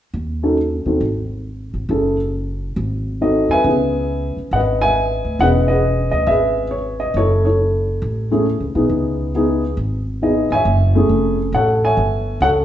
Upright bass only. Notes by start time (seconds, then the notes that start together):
0.14 D#2
0.86 D#2
1.00 G#1
1.74 G#1
1.89 F#1
2.76 G#1
3.49 G#2
3.64 C#2
4.37 muted upright bass stroke
4.51 G#1
5.25 D2
5.39 E1
6.12 D2
6.27 G#1
7.14 F#1
8.02 A1
8.60 C#2
8.75 B1
8.89 C#2
9.77 G#1
10.50 G#1
10.65 F#1
11.09 F1
11.52 A1
11.97 G1
12.40 C#2